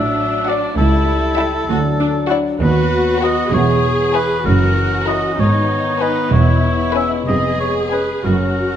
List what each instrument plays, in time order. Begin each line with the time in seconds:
Already playing: double bass section A1, cello section A2, french horn section F#3 D4, viola section D4, oboe E5
0.46 violin section F#4 D5 F#5, oboe D5
0.77 double bass section C#2, cello section C#2, french horn section G3 E4, viola section E4, oboe A4
1.38 violin section E4 E5 G5
1.69 cello section D2, double bass section D2, french horn section F#3 D4, viola section F#4
2.00 viola section D4
2.29 viola section E4, violin section F#4 D5 F#5
2.61 cello section D#2, double bass section D#2, french horn section F#3 B3, viola section F#4, oboe B4
3.21 violin section F#4 B4 F#5, oboe D#5
3.52 double bass section E1, cello section E2, french horn section E3, viola section G#4, oboe C#5
4.14 violin section E4 B4 G#5, oboe B4
4.45 double bass section F#1, cello section F#2, french horn section C#4, viola section F#4, oboe A#4
5.07 violin section E4 A#4 A#5, oboe D#5
5.38 double bass section G#1, cello section G#2, french horn section D#3 B3, viola section D#4, oboe C#5
6.00 violin section D#4 B4 G#5, oboe B4
6.32 double bass section E1, cello section E2, french horn section G#3, viola section E4, oboe C#5
6.94 violin section C#4 B4 G#5, oboe E5
7.27 double bass section F1, cello section F2, viola section G#4, oboe D#5
7.60 oboe C#5
7.92 violin section C#4 B4 G#5, oboe B4
8.25 double bass section F#1, cello section F#2, french horn section F#3 C#4, viola section F#4, oboe A#4